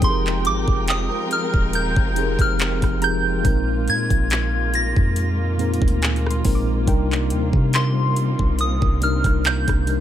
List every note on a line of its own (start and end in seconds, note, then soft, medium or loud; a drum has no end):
0.00 0.47 F1 loud
0.00 1.11 F3 medium
0.00 3.41 F3 medium
0.00 3.41 G#3 medium
0.00 1.12 C4 medium
0.00 3.41 C4 medium
0.00 1.12 D#4 medium
0.00 10.00 F4 medium
0.00 1.13 G4 medium
0.00 1.13 G#4 medium
0.00 0.10 A4 medium
0.00 3.41 A#4 medium
0.00 3.41 G5 medium
0.00 kick loud
0.00 closed hi-hat medium
0.04 0.18 C6 medium
0.10 1.16 A#4 medium
0.27 clap medium
0.45 0.67 G#1 medium
0.45 0.86 D6 medium
0.45 closed hi-hat medium
0.68 1.09 F1 loud
0.68 kick medium
0.88 2.02 G5 medium
0.88 1.33 D#6 medium
0.88 clap loud
0.88 closed hi-hat medium
1.31 1.71 F6 medium
1.31 closed hi-hat medium
1.54 1.95 D#1 loud
1.54 kick medium
1.73 2.42 G6 loud
1.73 closed hi-hat medium
1.96 2.38 F1 loud
1.96 kick loud
2.15 2.71 F3 medium
2.15 2.71 C4 medium
2.15 2.71 D#4 medium
2.15 2.72 G4 medium
2.15 2.72 G#4 medium
2.15 2.72 A#4 medium
2.15 closed hi-hat medium
2.39 2.80 F1 loud
2.39 3.05 F6 loud
2.39 kick medium
2.39 cross-stick medium
2.39 closed hi-hat medium
2.59 clap loud
2.59 closed hi-hat soft
2.82 3.42 F1 loud
2.82 kick medium
2.82 cross-stick medium
2.82 closed hi-hat medium
3.00 3.29 F3 medium
3.00 3.30 C4 medium
3.00 3.30 D#4 medium
3.00 3.31 G4 medium
3.00 3.31 G#4 medium
3.00 3.31 A#4 medium
3.00 3.84 A#5 medium
3.00 3.85 G6 loud
3.00 closed hi-hat medium
3.43 3.89 A#1 loud
3.43 4.54 A#2 medium
3.43 4.55 G#3 medium
3.43 6.84 G#3 medium
3.43 10.00 A#3 medium
3.43 4.55 C4 medium
3.43 4.56 D#4 medium
3.43 4.56 A#4 medium
3.43 kick loud
3.43 closed hi-hat medium
3.88 4.10 A#2 medium
3.88 4.77 G#6 loud
3.88 closed hi-hat medium
4.10 4.93 A#1 loud
4.10 kick medium
4.10 closed hi-hat medium
4.30 clap loud
4.30 closed hi-hat medium
4.74 6.42 A#6 loud
4.74 closed hi-hat medium
4.96 5.79 F2 loud
4.96 kick medium
5.16 closed hi-hat medium
5.57 6.13 A#2 medium
5.57 6.14 G#3 medium
5.57 6.14 C4 medium
5.57 6.15 D#4 medium
5.57 6.15 A#4 medium
5.57 closed hi-hat medium
5.74 closed hi-hat medium
5.82 6.42 D2 loud
5.82 kick loud
5.88 closed hi-hat medium
6.02 7.16 G#5 medium
6.02 clap loud
6.02 closed hi-hat soft
6.16 closed hi-hat soft
6.26 7.40 C6 medium
6.26 cross-stick medium
6.31 closed hi-hat medium
6.43 6.86 A#1 loud
6.43 6.72 A#2 medium
6.43 6.73 G#3 medium
6.43 6.73 C4 medium
6.43 6.74 D#4 medium
6.43 6.74 A#4 medium
6.43 kick medium
6.43 open hi-hat medium
6.55 7.64 D6 medium
6.86 7.32 C2 loud
6.86 7.97 C3 medium
6.86 10.00 C3 medium
6.86 7.97 G3 medium
6.86 10.00 G3 medium
6.86 10.00 C4 medium
6.86 7.98 D4 medium
6.86 7.98 D#4 medium
6.86 7.99 A#4 medium
6.86 8.02 G5 medium
6.86 kick loud
6.86 closed hi-hat medium
7.12 clap medium
7.30 7.53 D#2 loud
7.30 closed hi-hat medium
7.53 8.36 C3 loud
7.53 kick medium
7.73 8.56 C6 medium
7.73 clap loud
7.73 closed hi-hat medium
8.16 closed hi-hat medium
8.39 8.80 C2 loud
8.39 kick medium
8.59 9.04 D#6 loud
8.59 closed hi-hat medium
8.82 9.23 C2 loud
8.82 kick loud
9.00 9.56 C3 medium
9.00 9.57 G3 medium
9.00 9.57 D4 medium
9.00 9.58 D#4 medium
9.00 9.58 A#4 medium
9.00 9.43 F6 medium
9.00 closed hi-hat medium
9.24 9.66 C2 loud
9.24 kick loud
9.24 cross-stick medium
9.24 closed hi-hat medium
9.45 10.00 A#5 medium
9.45 10.00 G6 loud
9.45 clap loud
9.45 closed hi-hat soft
9.68 10.00 C2 loud
9.68 kick medium
9.68 cross-stick medium
9.68 closed hi-hat medium
9.86 10.00 C3 medium
9.86 10.00 G3 medium
9.86 10.00 D4 medium
9.86 10.00 D#4 medium
9.86 10.00 A#4 medium
9.86 closed hi-hat medium